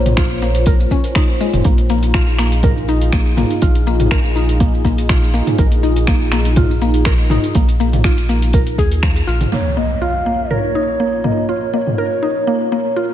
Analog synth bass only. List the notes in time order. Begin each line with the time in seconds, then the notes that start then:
Already playing: A#1
1.54 F1
1.65 A#1
3.62 A#1
5.59 A#1
7.55 A#1
8.78 D#2
9.28 A#1